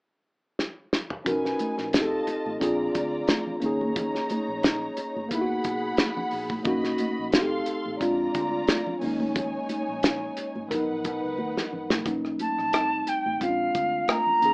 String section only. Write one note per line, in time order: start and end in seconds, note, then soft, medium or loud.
1.25 1.92 D#4 medium
1.25 1.92 B4 medium
1.25 1.92 G#5 medium
1.94 2.60 F4 medium
1.94 2.60 D#5 medium
1.94 2.60 A5 medium
2.62 3.61 F4 medium
2.62 3.60 D5 medium
2.62 3.60 A#5 medium
3.62 5.28 D#4 medium
3.62 5.28 C#5 medium
3.62 5.27 A#5 medium
5.32 6.64 G#4 medium
5.32 6.64 F#5 medium
5.32 6.64 B5 medium
6.66 7.32 F#4 medium
6.66 7.32 D#5 medium
6.66 7.32 B5 medium
7.33 8.00 A4 medium
7.33 7.99 F5 medium
7.33 8.00 C6 medium
8.01 9.00 F4 medium
8.01 9.00 D5 medium
8.01 9.00 A#5 medium
9.01 10.67 D#4 medium
9.01 10.67 C#5 medium
9.01 10.67 G#5 medium
10.72 12.04 D#4 medium
10.72 12.04 B4 medium
10.72 12.04 F#5 medium